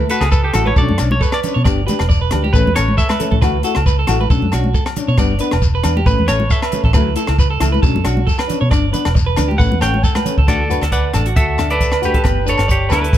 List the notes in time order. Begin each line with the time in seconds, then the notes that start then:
0.09 A3 F#4 A4 B4, muted nylon-string guitar stroke, closed hi-hat, shekere
0.21 C#2 G#4, cross-stick, low agogo
0.32 A4 B4, kick, shekere
0.44 G4 A4
0.54 A1 A3 E4 F#4 A4, cross-stick, closed hi-hat, low conga, low agogo, shekere
0.66 B4 C#5, high conga
0.76 B1 F#3 C#4 D4 A4 D5, kick, shekere
0.89 F#2, high conga
0.98 B1 D4, muted clean electric guitar stroke, cross-stick, closed hi-hat, low agogo, shekere
1.02 C#4
1.11 C#5, high conga
1.21 A4 B4, kick, shekere
1.32 B4 D5, cross-stick, low agogo
1.43 C#4 D4, closed hi-hat, low conga, shekere
1.54 B2 C#5
1.64 G1 B3 D4 G4 D5, kick, cross-stick, low conga, low agogo, shekere
1.87 D4 G4 B4, closed hi-hat, high conga, low conga, shekere
1.99 E1, cross-stick, low agogo
2.09 D5, kick, shekere
2.21 B4
2.31 D2 D4 G4, cross-stick, closed hi-hat, low conga, low agogo
2.44 G4, high conga
2.53 A1 E3 A3 C#4 A4 B4, kick, shekere
2.67 E2, high conga
2.75 A1 A3 C#4 A4 C#5, cross-stick, closed hi-hat, low agogo, shekere
2.88 high conga
2.97 A4 E5, kick, shekere
3.09 B4, cross-stick, high conga, low agogo
3.20 A3 C#4 A4, closed hi-hat, low conga, shekere
3.31 A2 A4, kick, low conga
3.42 D2 E3 A3 E4 F#4 B4, kick, cross-stick, low conga, low agogo, shekere
3.63 A3 E4 F#4 A4, closed hi-hat, shekere
3.75 C#2, cross-stick, low agogo
3.86 B4, kick, shekere
3.99 A4
4.07 A1 A3 E4 F#4, cross-stick, closed hi-hat, low conga, low agogo, shekere
4.21 B4, high conga
4.30 B1 F#3 C#4 D4 A4, kick, shekere
4.42 F#2, high conga
4.52 B1 D4 F#4, cross-stick, closed hi-hat, low agogo, shekere
4.56 C#4
4.64 high conga
4.74 A4, kick, shekere
4.86 muted clean electric guitar stroke, cross-stick, low agogo
4.96 C#4 D4, closed hi-hat, low conga, shekere
5.08 B2 C#5
5.18 G1 G3 B3 D4 D5, kick, cross-stick, low conga, low agogo, shekere
5.39 B3 D4 B4, closed hi-hat, shekere
5.51 E1, cross-stick, low agogo
5.62 kick, shekere
5.75 B4
5.83 E2 B3 D4, cross-stick, closed hi-hat, low conga, low agogo, shekere
5.97 G4, high conga
6.06 A1 E3 A3 C#4 B4, kick, shekere
6.18 E2, high conga
6.28 A1 A3 C#4 C#5, cross-stick, closed hi-hat, low agogo, shekere
6.40 high conga
6.50 A4 E5, kick, shekere
6.62 B4, cross-stick, low agogo
6.72 A3 C#4, closed hi-hat, low conga, shekere
6.84 A1 A4, kick
6.93 D2 F#3 A3 E4 B4, kick, cross-stick, low conga, low agogo, shekere
7.16 A3 E4 A4, closed hi-hat, shekere
7.27 C#2, cross-stick, low agogo
7.39 B4, kick, shekere
7.50 A4
7.60 C#2 A3 E4, cross-stick, closed hi-hat, low conga, low agogo, shekere
7.72 B4, high conga
7.82 B1 F#3 C#4 D4 A4, kick, shekere
7.94 F#2, high conga
8.04 B1 C#4 D4 F#4, cross-stick, closed hi-hat, low agogo, shekere
8.17 high conga
8.27 A4, kick, shekere
8.39 B4, cross-stick, low agogo
8.48 C#4 D4, closed hi-hat, low conga, shekere
8.61 B2 C#5
8.69 G1 D4 D5, muted nylon-string guitar stroke, kick, cross-stick, low agogo, shekere
8.92 B3 D4 B4, closed hi-hat, low conga, shekere
9.05 E1, cross-stick, low agogo
9.15 muted clean electric guitar stroke, kick, shekere
9.26 B4
9.36 D2 D4, muted nylon-string guitar stroke, cross-stick, closed hi-hat, low conga, low agogo, shekere
9.48 G4, high conga
9.58 A1 E3 A3 C#4 B4 F#5, kick, shekere
9.72 E2, high conga
9.81 A1 C#4 C#5 G5, cross-stick, closed hi-hat, low agogo, shekere
9.85 A3
9.94 high conga
10.04 A4 A5, kick, shekere
10.15 B4, cross-stick, high conga, low agogo
10.25 A3 C#4, closed hi-hat, low conga, shekere
10.38 C#2 A4, kick
10.47 D2 E3 A3 D4 F#4 A4 D5, kick, cross-stick, closed hi-hat, low agogo, shekere
10.69 D4 F#4 B4, closed hi-hat, shekere
10.82 D2 A4, cross-stick, closed hi-hat, low agogo
10.92 B4 D5 F#5, kick, closed hi-hat, shekere
11.14 A1 A3 D4 A4, cross-stick, closed hi-hat, low agogo, shekere
11.26 F#4, closed hi-hat
11.36 D2 F#4 A4 E5, kick, closed hi-hat, shekere
11.58 A3 D4 A4, cross-stick, closed hi-hat, low agogo, shekere
11.70 A4 B4 D5, closed hi-hat
11.81 kick, closed hi-hat, shekere
11.92 B4, cross-stick, low agogo
12.02 A3 D4 F#4 G4 B4, closed hi-hat, shekere
12.14 A4, kick, closed hi-hat
12.24 G1 E3 B3 B4, muted nylon-string guitar stroke, kick, cross-stick, closed hi-hat, low agogo, shekere
12.45 B3 D4 A4 B4 C#5, closed hi-hat, shekere
12.58 G1, cross-stick, closed hi-hat, low agogo
12.68 G4 C#5 D5, kick, closed hi-hat, shekere
12.89 D2 D4 E4 B4, cross-stick, closed hi-hat, low agogo, shekere
12.93 B3
13.02 A4, closed hi-hat
13.13 A1, muted nylon-string guitar stroke, kick, closed hi-hat, shekere